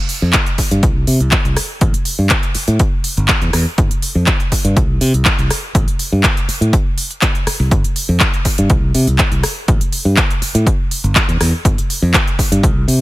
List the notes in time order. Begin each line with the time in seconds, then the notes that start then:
0.09 open hi-hat
0.22 F2
0.33 kick, clap, closed hi-hat
0.46 closed hi-hat
0.58 muted fingered electric bass stroke, kick, open hi-hat
0.71 G2, closed hi-hat
0.83 C2, kick, closed hi-hat
1.07 C3, open hi-hat
1.20 C2, closed hi-hat
1.31 kick, clap, closed hi-hat
1.45 C2, closed hi-hat
1.57 cross-stick, open hi-hat
1.81 A1, kick, closed hi-hat
1.94 closed hi-hat
2.05 open hi-hat
2.19 G2
2.29 kick, clap, closed hi-hat
2.43 closed hi-hat
2.55 muted fingered electric bass stroke, open hi-hat
2.68 A2, closed hi-hat
2.79 kick, closed hi-hat
3.04 open hi-hat
3.17 G1, closed hi-hat
3.28 kick, clap, closed hi-hat
3.42 E2, closed hi-hat
3.53 E2, cross-stick, open hi-hat
3.78 G1, kick, closed hi-hat
3.91 closed hi-hat
4.02 open hi-hat
4.15 F2
4.27 kick, clap, closed hi-hat
4.40 closed hi-hat
4.52 muted fingered electric bass stroke, kick, open hi-hat
4.65 G2, closed hi-hat
4.77 C2, kick, closed hi-hat
5.01 C3, open hi-hat
5.14 C2, closed hi-hat
5.25 kick, clap, closed hi-hat
5.39 C2, closed hi-hat
5.50 cross-stick, open hi-hat
5.75 A1, kick, closed hi-hat
5.88 closed hi-hat
5.99 open hi-hat
6.12 G2
6.23 kick, clap, closed hi-hat
6.37 closed hi-hat
6.48 muted fingered electric bass stroke, open hi-hat
6.61 A2, closed hi-hat
6.73 kick, closed hi-hat
6.98 open hi-hat
7.11 closed hi-hat
7.22 kick, clap, closed hi-hat
7.35 closed hi-hat
7.47 muted fingered electric bass stroke, cross-stick, open hi-hat
7.60 C2
7.71 kick, closed hi-hat
7.84 closed hi-hat
7.96 open hi-hat
8.09 F2
8.20 kick, clap, closed hi-hat
8.34 closed hi-hat
8.45 muted fingered electric bass stroke, kick, open hi-hat
8.58 G2, closed hi-hat
8.70 C2, kick, closed hi-hat
8.95 C3, open hi-hat
9.07 C2, closed hi-hat
9.19 kick, clap, closed hi-hat
9.32 C2, closed hi-hat
9.43 cross-stick, open hi-hat
9.68 A1, kick, closed hi-hat
9.81 closed hi-hat
9.93 open hi-hat
10.05 G2
10.17 kick, clap, closed hi-hat
10.30 closed hi-hat
10.42 muted fingered electric bass stroke, open hi-hat
10.55 A2, closed hi-hat
10.67 kick, closed hi-hat
10.91 open hi-hat
11.04 G1, closed hi-hat
11.15 kick, clap, closed hi-hat
11.29 E2, closed hi-hat
11.40 E2, cross-stick, open hi-hat
11.65 G1, kick, closed hi-hat
11.78 closed hi-hat
11.90 open hi-hat
12.02 F2
12.14 kick, clap, closed hi-hat
12.27 closed hi-hat
12.39 muted fingered electric bass stroke, kick, open hi-hat
12.52 G2, closed hi-hat
12.63 C2, kick, closed hi-hat
12.88 C3, open hi-hat